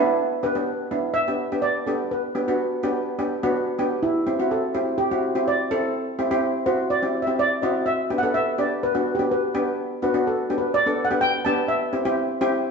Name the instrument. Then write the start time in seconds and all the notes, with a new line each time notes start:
steel pan
Already playing: B3 D4 E4
0.43 B3 D4 G4 B4
0.55 B3 D4 G4
0.91 B3 D4 E4
1.14 E5
1.28 B3 D4 G4
1.52 B3 D4 G4
1.62 D5
1.86 B3 D4 G4 A4
2.11 B4
2.35 B3 D4 G4
2.48 B3 D4 F#4
2.83 B3 D4 G4
3.19 B3 D4 G4
3.43 B3 D4 F#4
3.79 B3 D4 G4
4.03 E4
4.27 C4 E4 G4
4.39 C4 E4 F#4
4.51 A4
4.74 C4 E4 G4
4.98 G4
5.11 C4 E4 F#4
5.35 C4 E4 G4
5.48 D5
5.71 C4 E4 A4
6.19 C4 E4 G4
6.31 C4 E4 G4
6.66 C4 E4 F#4 C5
6.90 D5
7.02 C4 E4 G4
7.22 E5
7.27 C4 E4 G4
7.39 D5
7.62 C4 E4 F#4 D#5
7.86 E5
8.10 B3 D4 G4
8.18 F#5
8.23 B3 D4 A4
8.34 E5
8.58 B3 D4 G4 D5
8.83 B4
8.95 B3 D4 F#4
9.15 G4
9.19 B3 D4 G4
9.31 B4
9.55 B3 D4 G4
10.02 B3 D4 F#4 B4
10.14 B3 D4 F#4
10.27 A4
10.50 B3 D4 G4
10.58 B4
10.74 D5
10.86 B3 D4 A4
11.05 F#5
11.11 B3 D4 G4
11.21 G5
11.45 B3 D4 G4 A5
11.68 E5
11.93 C4 E4 G4
12.05 C4 E4 G4
12.41 C4 E4 G4